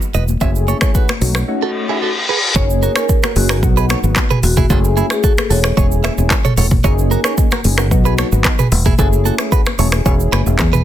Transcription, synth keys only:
0.41 A3 C#4 E4 G#4
0.82 A3 C#4 E4 G#4
1.21 A3 C#4 D#4 F#4
1.48 A3 C#4 D#4 F#4
1.89 A3 C#4 D#4 F#4
2.55 A#3 C#4 D#4 G#4
2.96 A#3 C#4 D#4 G#4
3.36 A#3 C#4 D#4 G#4
3.63 F#3 B3 D#4 F#4
4.03 F#3 B3 D#4 F#4
4.70 A3 C#4 E4 G#4
5.10 A3 C#4 E4 G#4
5.50 A3 C#4 E4 G#4
5.77 G#3 C#4 E4 G#4
6.18 G#3 C#4 E4 G#4
6.84 A#3 C#4 D#4 G#4
7.25 A#3 C#4 D#4 G#4
7.64 A#3 C#4 D#4 G#4
7.91 F#3 B3 D#4 F#4
8.32 F#3 B3 D#4 F#4
8.98 A3 C#4 E4 G#4
9.39 A3 C#4 E4 G#4
9.79 A3 C#4 E4 G#4
10.05 G#3 C#4 E4 G#4
10.46 G#3 C#4 E4 G#4

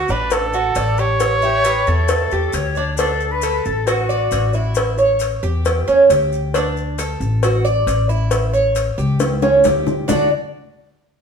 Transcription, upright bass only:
0.09 A1
0.76 A1
1.87 E2
2.32 E2
2.53 D2
3.66 A1
4.32 A1
5.43 E2
5.88 E2
6.10 D2
7.20 A1
7.87 A1
8.98 C#2
9.65 D2
10.09 D2

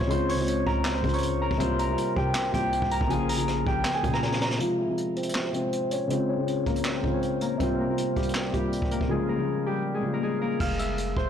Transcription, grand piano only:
Already playing: C3 F3 G#3 F4
0.07 C#3 G#3 C4
0.13 F4
0.36 C#3 G#3 C4
0.41 F4
1.01 C#3 G#3 C4
1.07 F4
1.58 C3 G3 A#3
1.63 F4
1.86 C3 G3 A#3
1.91 F4
2.51 C3 G3 A#3
2.57 F4
3.07 C#3 F3 A#3
3.13 F4
3.36 C#3 F3 A#3
3.41 F4
4.01 C#3 F3 A#3
4.07 F4
4.58 C3 F3 G#3
4.63 F4
4.86 C3 F3 G#3
4.91 F4
5.51 C3 F3 G#3
5.56 F4
6.07 C#3 G#3 C4
6.13 F4
6.36 C#3 G#3 C4
6.41 F4
7.01 C#3 G#3 C4
7.07 F4
7.57 C3 G3 A#3
7.63 F4
7.86 C3 G3 A#3
7.91 F4
8.51 C3 G3 A#3
8.57 F4
9.08 C#3 F3 A#3
9.13 F4
9.36 C#3 F3 A#3
9.41 F4
10.01 C#3 F3 A#3
10.07 F4

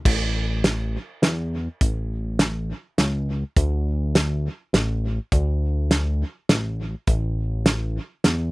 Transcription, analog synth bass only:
0.05 A1
1.22 E2
1.81 A1
2.98 C#2
3.57 D2
4.73 A1
5.32 D2
6.49 A1
7.07 A1
8.24 E2

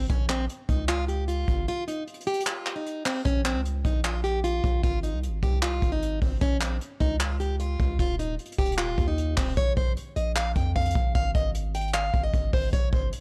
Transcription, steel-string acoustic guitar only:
0.10 C#4
0.29 C4
0.69 D#4
0.89 F4
1.08 G4
1.28 F4
1.68 F4
1.88 D#4
2.27 G4
2.46 F4
2.76 D#4
3.06 C4
3.25 C#4
3.45 C4
3.85 D#4
4.04 F4
4.24 G4
4.44 F4
4.83 F4
5.03 D#4
5.43 G4
5.62 F4
5.92 D#4
6.22 C4
6.41 C#4
6.61 C4
7.00 D#4
7.20 F4
7.40 G4
7.60 F4
8.00 F4
8.19 D#4
8.59 G4
8.78 F4
9.08 D#4
9.37 C4
9.57 C#5
9.77 C5
10.16 D#5
10.36 F5
10.56 G5
10.76 F5
11.15 F5
11.35 D#5
11.75 G5
11.94 F5
12.23 D#5
12.53 C5
12.73 C#5
12.93 C5

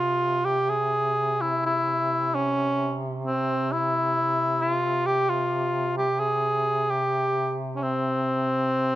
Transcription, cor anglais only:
Already playing: F4
0.45 G4
0.70 G#4
1.41 E4
1.66 E4
2.35 C#4
3.26 C4
3.72 E4
4.62 F4
5.06 G4
5.30 F4
5.98 G4
6.19 G#4
6.90 G4
7.76 C#4
7.82 C4

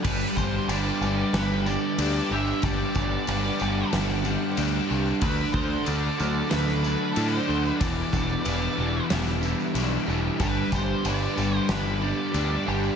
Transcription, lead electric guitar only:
0.03 B4
0.37 C5
0.68 D5
1.34 B4
1.66 D5
2.33 E5
2.64 D5
5.22 B4
5.53 C5
5.85 D5
6.49 B4
7.12 A4
7.28 C5
7.67 B4
7.77 D5
10.42 B4
10.76 C5
11.06 D5
11.56 C5
11.70 B4
12.01 D5

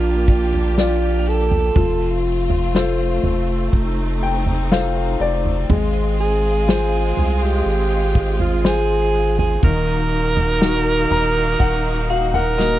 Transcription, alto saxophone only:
Already playing: F4
0.79 F4
1.28 A4
6.21 G#4
7.43 G4
8.41 F4
8.65 G#4
9.39 G#4
9.64 A#4
12.10 F#4
12.35 A#4

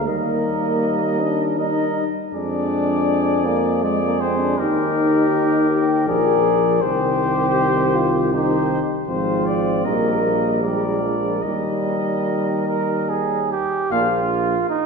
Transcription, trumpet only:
0.08 D#5
1.59 D#5
2.33 D5
3.83 D5
4.21 C5
4.58 A#4
6.07 D5
6.81 C5
8.32 C5
9.08 C5
9.46 D5
9.85 D#5
10.63 D5
11.43 D#5
13.91 F5

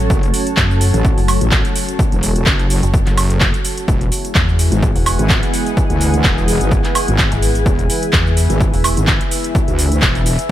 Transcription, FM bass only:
0.57 F#2
1.18 F#1
2.83 F#1
4.35 E2
4.96 E1
7.32 G#1
8.13 E2
8.73 E1

